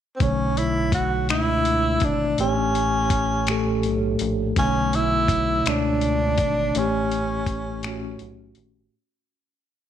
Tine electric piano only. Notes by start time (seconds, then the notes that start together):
0.20 B2 D3 A3
0.24 C#5
1.29 B2 A3 D4 E5
2.38 A2 A3 G4
2.42 C#5
3.47 A2 A3 G4 A4
4.55 B2 D3 A3
4.59 C#5
5.66 B2 A3 D4
5.70 C#5
6.74 A2 A3 C#4
6.79 G4
7.83 A2 A3 C#4
7.88 F#4